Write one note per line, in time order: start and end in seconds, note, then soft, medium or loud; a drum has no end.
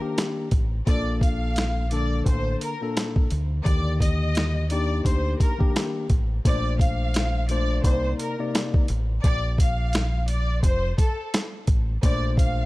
0.00 0.47 D#3 medium
0.00 0.48 A#3 medium
0.00 0.48 D4 medium
0.00 0.48 G4 loud
0.00 0.13 A#4 medium
0.18 snare loud
0.18 snare medium
0.18 closed hi-hat loud
0.51 0.80 A1 medium
0.51 kick loud
0.51 closed hi-hat medium
0.86 2.23 A#1 loud
0.86 1.84 A#2 loud
0.86 1.84 A#3 medium
0.86 1.84 D4 medium
0.86 1.85 A4 loud
0.86 1.18 D5 loud
0.86 kick loud
0.86 closed hi-hat medium
1.21 1.88 F5 medium
1.21 kick loud
1.21 closed hi-hat medium
1.56 snare loud
1.56 closed hi-hat medium
1.91 2.73 D3 medium
1.91 2.73 A#3 medium
1.91 2.74 D4 medium
1.91 2.74 A4 loud
1.91 2.23 D5 medium
1.91 closed hi-hat medium
2.26 2.55 A1 medium
2.26 2.58 C5 medium
2.26 kick medium
2.26 closed hi-hat medium
2.61 2.93 A#4 medium
2.61 closed hi-hat medium
2.81 3.27 A#2 medium
2.81 3.28 A#3 medium
2.81 3.28 D4 medium
2.81 3.28 A4 loud
2.97 snare loud
2.97 snare medium
2.97 closed hi-hat medium
3.16 kick loud
3.31 3.60 D2 medium
3.31 closed hi-hat medium
3.64 5.02 D#2 loud
3.64 4.63 D3 medium
3.64 4.62 D#3 medium
3.64 4.62 A#3 medium
3.64 4.63 G4 loud
3.64 3.96 D5 loud
3.64 kick loud
3.64 closed hi-hat medium
4.00 4.66 D#5 medium
4.00 kick medium
4.00 closed hi-hat medium
4.35 snare loud
4.35 snare medium
4.35 closed hi-hat medium
4.70 5.53 A#3 medium
4.70 5.53 D4 medium
4.70 5.52 D#4 medium
4.70 5.53 G4 loud
4.70 5.02 D5 medium
4.70 closed hi-hat medium
5.05 5.34 D2 loud
5.05 5.37 C5 medium
5.05 kick medium
5.05 closed hi-hat medium
5.40 5.71 A#4 medium
5.40 kick medium
5.40 closed hi-hat medium
5.58 6.06 D#3 medium
5.58 6.06 A#3 medium
5.58 6.06 D4 medium
5.58 6.06 G4 loud
5.58 kick medium
5.76 snare loud
5.76 snare medium
5.76 closed hi-hat medium
6.10 6.38 A1 medium
6.10 kick medium
6.10 closed hi-hat medium
6.45 7.81 A#1 loud
6.45 7.43 A#2 medium
6.45 7.43 A3 medium
6.45 7.43 D4 medium
6.45 7.43 C5 loud
6.45 6.78 D5 loud
6.45 kick loud
6.45 closed hi-hat medium
6.79 7.45 F5 medium
6.79 kick loud
6.79 closed hi-hat medium
7.14 snare loud
7.14 closed hi-hat medium
7.49 7.84 A#2 medium
7.49 7.85 A3 medium
7.49 7.85 D4 medium
7.49 7.85 C5 loud
7.49 7.81 D5 medium
7.49 closed hi-hat medium
7.84 8.13 C2 loud
7.84 8.34 C3 medium
7.84 8.34 A#3 medium
7.84 8.35 D#4 medium
7.84 8.16 C5 loud
7.84 8.35 D5 loud
7.84 kick medium
7.84 closed hi-hat loud
8.20 8.51 A#4 medium
8.20 closed hi-hat medium
8.39 8.85 C3 medium
8.39 8.86 A#3 medium
8.39 8.86 D#4 medium
8.39 8.86 D5 loud
8.55 snare loud
8.55 snare medium
8.55 closed hi-hat loud
8.74 kick loud
8.88 9.18 A1 medium
8.88 closed hi-hat medium
9.24 10.60 A#1 loud
9.24 9.55 D5 loud
9.24 kick loud
9.24 closed hi-hat medium
9.58 10.25 F5 medium
9.58 kick medium
9.58 closed hi-hat medium
9.93 snare loud
9.93 closed hi-hat medium
10.28 10.60 D5 medium
10.28 closed hi-hat medium
10.63 10.92 F1 loud
10.63 10.95 C5 loud
10.63 kick medium
10.63 closed hi-hat loud
10.98 11.30 A4 medium
10.98 kick loud
10.98 closed hi-hat medium
11.34 snare loud
11.34 snare medium
11.34 closed hi-hat loud
11.67 11.96 A1 medium
11.67 kick loud
11.67 closed hi-hat medium
12.03 12.65 A#1 loud
12.03 12.65 A#2 loud
12.03 12.65 A3 medium
12.03 12.65 D4 medium
12.03 12.65 C5 loud
12.03 12.35 D5 loud
12.03 kick loud
12.03 closed hi-hat medium
12.37 12.65 F5 medium
12.37 kick loud
12.37 closed hi-hat medium